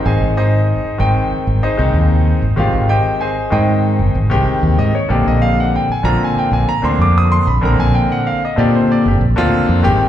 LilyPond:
<<
  \new Staff \with { instrumentName = "Grand piano" } { \time 4/4 \key bes \mixolydian \tempo 4 = 95 <aes' c'' ees'' aes''>8 <ees' aes' c'' ees''>4. r8 <ees' aes' c'' ees''>4. | <f' f''>8 <g' c'' ees'' g''>8 <aes' c'' ees'' aes''>8 <ees' aes' c'' ees''>4. r8 ees''16 des''16 | d''16 ees''16 f''16 ges''16 g''16 aes''16 bes''16 aes''16 g''16 aes''16 bes''16 c'''16 d'''16 ees'''16 c'''16 ces'''16 | bes''16 aes''16 g''16 ges''16 f''16 ees''16 d''16 c''16 d''16 g'16 r4. | }
  \new Staff \with { instrumentName = "Grand piano" } { \time 4/4 \key bes \mixolydian <ees aes c' ees'>4~ <ees aes c' ees'>16 r16 <ees aes c' g''>4 r16 <ees aes c' ees'>4 r16 | <ees aes c' g'>4~ <ees aes c' g'>16 r16 <ees aes c' g''>4 r16 <ees aes c' g'>4 r16 | <d bes c' g'>4~ <d bes c' g'>16 r16 <d bes c' f'>4 r16 <d bes c' d'>4 r16 | <d bes c' bes'>4~ <d bes c' bes'>16 r16 <d bes c' g'>4 r16 <d bes c' f'>8. <ees aes c' g'>8 | }
  \new Staff \with { instrumentName = "Fretless electric bass" } { \clef bass \time 4/4 \key bes \mixolydian aes,,16 aes,,4 r16 aes,,16 r8 aes,,16 r16 c,16 ees,8. aes,,16 | aes,,16 aes,,8 r8. aes,8. g,,16 aes,,16 c,16 r16 ees,16 aes,16 r16 | bes,,16 bes,,4 r16 bes,,16 r8 bes,,16 r16 d,16 f,8. bes,,16 | bes,,16 bes,,8 r8. bes,8. g,,16 bes,,16 d,16 r16 f,16 aes,,16 r16 | }
>>